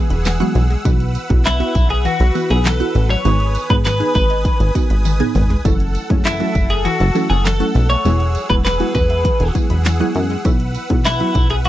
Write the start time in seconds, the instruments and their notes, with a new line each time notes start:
Already playing: synth pluck E3 F#3 G#3 B3 G#4, supersaw synth G#4 F#5 E6
0.10 analog synth bass E1, synth arpeggio sound B5, closed hi-hat
0.25 synth arpeggio sound E3, snare, clap, closed hi-hat, tambourine
0.40 synth pluck E3 F#3 G#3 B3 F#4, synth arpeggio sound F#6, closed hi-hat
0.55 analog synth bass B1, synth arpeggio sound E3, closed hi-hat, tambourine
0.70 synth arpeggio sound G#3, closed hi-hat
0.85 analog synth bass B1, synth arpeggio sound E3, synth pluck B3 E4 F#4, supersaw synth B4, kick, closed hi-hat, tambourine
1.00 closed hi-hat
1.15 closed hi-hat, tambourine
1.30 analog synth bass B1, synth pluck B3 E4 F#4, synth arpeggio sound B3, kick, closed hi-hat
1.45 synth arpeggio sound E3, clean electric guitar E4, snare, clap, closed hi-hat, tambourine
1.60 synth pluck B3 E4 F#4, synth arpeggio sound F#4, closed hi-hat
1.75 analog synth bass B1, kick, closed hi-hat, tambourine
1.90 clean electric guitar G#4, synth arpeggio sound E5, closed hi-hat
2.05 synth arpeggio sound E3, clean electric guitar F#4, closed hi-hat, tambourine
2.20 analog synth bass B1, synth arpeggio sound F#5, closed hi-hat
2.35 synth arpeggio sound E3, synth pluck B3 E4 F#4, closed hi-hat, tambourine
2.50 analog synth bass B1, clean electric guitar G#4, synth arpeggio sound B5, closed hi-hat
2.65 synth arpeggio sound E3, clean electric guitar A4, snare, clap, closed hi-hat, tambourine
2.80 synth pluck B3 E4 F#4, synth arpeggio sound F#6, closed hi-hat
2.95 analog synth bass A1, synth arpeggio sound E3, closed hi-hat, tambourine
3.10 synth arpeggio sound F#3, clean electric guitar C#5, closed hi-hat
3.25 analog synth bass G#1, synth arpeggio sound D#3, synth pluck B3 D#4 G#4, supersaw synth G#5 D#6, closed hi-hat, tambourine
3.40 closed hi-hat
3.55 closed hi-hat, tambourine
3.70 analog synth bass G#1, synth pluck B3 D#4 G#4, synth arpeggio sound B3, clean electric guitar B4, kick, closed hi-hat
3.85 synth arpeggio sound D#3, clean electric guitar B4, snare, clap, closed hi-hat, tambourine
4.00 synth pluck B3 D#4 G#4, synth arpeggio sound G#4, closed hi-hat
4.15 analog synth bass G#1, clean electric guitar B4, kick, closed hi-hat, tambourine
4.30 synth arpeggio sound D#5, closed hi-hat
4.45 synth arpeggio sound D#3, kick, closed hi-hat, tambourine
4.60 analog synth bass G#1, synth arpeggio sound G#5, closed hi-hat
4.75 synth arpeggio sound D#3, synth pluck B3 D#4 F#4, kick, closed hi-hat, tambourine
4.90 analog synth bass G#1, synth arpeggio sound B5, closed hi-hat
5.05 synth arpeggio sound D#3, closed hi-hat, high tom, tambourine
5.20 synth pluck B3 D#4 G#4, synth arpeggio sound G#6, closed hi-hat, mid tom
5.35 analog synth bass G#1, synth arpeggio sound D#3, mid tom, open hi-hat, tambourine
5.50 synth arpeggio sound G#3, closed hi-hat, floor tom
5.65 analog synth bass F#1, synth arpeggio sound E3, synth pluck F#3 A3 C#4 E4 A4, supersaw synth A4 F#5, kick, closed hi-hat, tambourine
5.80 closed hi-hat
5.95 closed hi-hat, tambourine
6.10 analog synth bass F#1, synth pluck F#3 A3 C#4 E4 G#4, synth arpeggio sound C#4, kick, closed hi-hat
6.25 synth arpeggio sound E3, clean electric guitar E4, snare, clap, closed hi-hat, tambourine
6.40 synth pluck F#3 A3 C#4 E4 A4, synth arpeggio sound F#4, closed hi-hat
6.55 analog synth bass F#1, kick, closed hi-hat, tambourine
6.70 clean electric guitar G#4, synth arpeggio sound E5, closed hi-hat
6.85 synth arpeggio sound E3, clean electric guitar F#4, closed hi-hat, tambourine
7.00 analog synth bass F#1, synth arpeggio sound A5, closed hi-hat
7.15 synth arpeggio sound E3, synth pluck F#3 A3 C#4 E4 A4, closed hi-hat, tambourine
7.30 analog synth bass F#1, clean electric guitar G#4, synth arpeggio sound C#6, closed hi-hat
7.45 synth arpeggio sound E3, clean electric guitar A4, snare, clap, closed hi-hat, tambourine
7.60 synth pluck F#3 A3 C#4 E4 A4, synth arpeggio sound F#6, closed hi-hat
7.75 analog synth bass B1, synth arpeggio sound E3, closed hi-hat, tambourine
7.90 synth arpeggio sound A3, clean electric guitar C#5, closed hi-hat
8.05 analog synth bass E1, synth arpeggio sound E3, synth pluck F#3 G#3 B3 E4 G#4, supersaw synth G#4, closed hi-hat, tambourine
8.20 closed hi-hat
8.35 closed hi-hat, tambourine
8.50 analog synth bass E1, synth pluck F#3 G#3 B3 E4 G#4, synth arpeggio sound B3, clean electric guitar B4, kick, closed hi-hat
8.65 synth arpeggio sound E3, clean electric guitar B4, snare, clap, closed hi-hat, tambourine
8.80 synth pluck F#3 G#3 B3 E4 G#4, synth arpeggio sound F#4, closed hi-hat
8.95 analog synth bass E1, clean electric guitar B4, kick, closed hi-hat, tambourine
9.10 synth arpeggio sound E5, closed hi-hat
9.25 synth arpeggio sound E3, kick, closed hi-hat, tambourine
9.40 analog synth bass E1, synth arpeggio sound G#5, closed hi-hat
9.55 synth arpeggio sound E3, synth pluck F#3 G#3 B3 E4 G#4, kick, closed hi-hat, tambourine
9.70 analog synth bass E1, synth arpeggio sound B5, closed hi-hat
9.85 synth arpeggio sound E3, snare, clap, closed hi-hat, tambourine
10.00 synth pluck F#3 G#3 B3 E4 G#4, synth arpeggio sound F#6, closed hi-hat
10.15 analog synth bass F#2, synth arpeggio sound E3, closed hi-hat, tambourine
10.30 synth arpeggio sound G#3, closed hi-hat
10.45 analog synth bass B1, synth arpeggio sound E3, synth pluck F#3 B3 E4, supersaw synth B4 E6, kick, closed hi-hat, tambourine
10.60 closed hi-hat
10.75 closed hi-hat, tambourine
10.90 analog synth bass B1, synth pluck F#3 B3 E4, synth arpeggio sound B3, kick, closed hi-hat
11.05 synth arpeggio sound E3, clean electric guitar E4, snare, clap, closed hi-hat, tambourine
11.20 synth pluck F#3 B3 E4, synth arpeggio sound F#4, closed hi-hat
11.35 analog synth bass B1, kick, closed hi-hat, tambourine
11.50 clean electric guitar G#4, synth arpeggio sound E5, closed hi-hat
11.65 synth arpeggio sound E3, clean electric guitar F#4, closed hi-hat